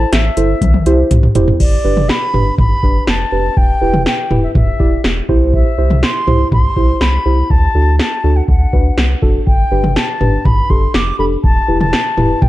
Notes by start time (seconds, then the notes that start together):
Already playing: A5
0.12 A1 E5, snare, closed hi-hat
0.37 G1 E4 A4 C5, closed hi-hat
0.61 C2, kick, closed hi-hat, high tom
0.74 high tom
0.86 C2 E4 G4 C5, closed hi-hat
1.11 C2, closed hi-hat, mid tom
1.23 mid tom
1.35 F1 E4 G4 C5, closed hi-hat, floor tom
1.48 floor tom
1.60 G1 D5, kick, crash
1.84 G1 D4 G4 B4
1.97 mid tom
2.09 B5, snare
2.34 G1 D4 G4 B4, mid tom
2.58 G1 B5, kick, mid tom
2.83 G1 D4 G4 B4, kick
3.07 F1 A5, snare
3.32 F1 D4 G4 B4
3.57 E1 G5, kick
3.81 E1 E4 G4 B4
3.94 mid tom
4.06 G5, snare
4.31 E1 E4 G4 B4, mid tom
4.43 E5
4.55 E1 E5, kick, mid tom
4.80 E1 E4 G4 D5, kick
5.04 E1, snare
5.29 C2 E4 G4 C5, kick
5.54 E5, kick
5.78 C2 E4 G4 C5
5.90 mid tom
6.03 C6, snare
6.27 C2 E4 G4 C5, mid tom
6.52 C2 C6, kick, mid tom
6.76 C2 E4 G4 C5, kick
7.01 C2 B5, snare
7.26 C2 E4 G4 C5
7.50 D2 A5, kick
7.75 D2 D4 F#4 A4
7.99 A5, snare
8.24 D2 D4 F#4 A4
8.36 F#5
8.48 D2 F#5, kick
8.73 D2 D4 F#4 B4, kick
8.98 C2, snare
9.22 F#1 D4 F#4 A4, kick
9.47 G1 G5, kick
9.71 G1 D4 G4 B4
9.84 mid tom
9.96 A5, snare
10.21 G1 D4 G4 B4, mid tom
10.45 G1 B5, kick, mid tom
10.70 G1 D4 G4 A4 C6, kick
10.94 F1 D6, snare
11.19 F1 D4 G4 A4 B5
11.44 E1 A5, kick
11.68 E1 E4 G4 B4
11.80 A5, mid tom
11.93 snare
12.17 E1 E4 G4 B4, mid tom
12.42 E1 G5, kick, mid tom